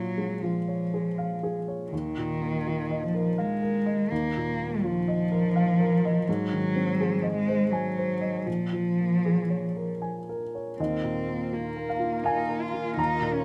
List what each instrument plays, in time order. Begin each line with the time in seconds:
Already playing: upright piano A#2 F4, cello F#3
0.18 upright piano G#3
0.43 cello F3, upright piano F4
0.68 upright piano C#5
0.94 upright piano G#4
1.18 upright piano F5
1.43 upright piano G#4
1.68 upright piano C#5
1.91 upright piano D#2, cello D#3
2.18 upright piano A#2
2.42 upright piano A#3
2.67 upright piano F4
2.90 upright piano D#5
3.03 cello F3
3.14 upright piano A#4
3.38 cello G#3, upright piano F5
3.62 upright piano A#4
3.86 upright piano D#5
4.11 upright piano D#2, cello A#3
4.37 upright piano A#2
4.60 upright piano A#3
4.84 cello F3, upright piano F4
5.08 upright piano D#5
5.32 upright piano A#4
5.56 upright piano F5
5.80 upright piano A#4
6.05 upright piano D#5
6.28 upright piano G#2, cello F#3
6.53 upright piano D#3
6.76 upright piano C4
7.01 upright piano G#4
7.23 upright piano D#5
7.34 cello G#3
7.48 upright piano C5
7.71 cello F#3, upright piano G#5
7.98 upright piano C5
8.21 upright piano D#5
8.46 upright piano A#2, cello F3
8.73 upright piano F3
9.00 upright piano A#3
9.25 upright piano G#4
9.50 upright piano C#5
9.76 upright piano A#4
10.02 upright piano G#5
10.29 upright piano A#4
10.55 upright piano C#5
10.78 upright piano D#2 D#5, analog synth pad A#3 F4 A#4, cello C4
11.04 upright piano A#2
11.28 upright piano A#3
11.53 cello A#3, upright piano F4
11.76 upright piano A#4
11.89 upright piano F5
11.99 upright piano F4
12.24 cello D#4, upright piano F5 G#5
12.49 upright piano A#4
12.62 cello F4
12.74 upright piano F4
12.97 upright piano D#2 A#5, cello D#4
13.21 upright piano A#2
13.33 cello C#4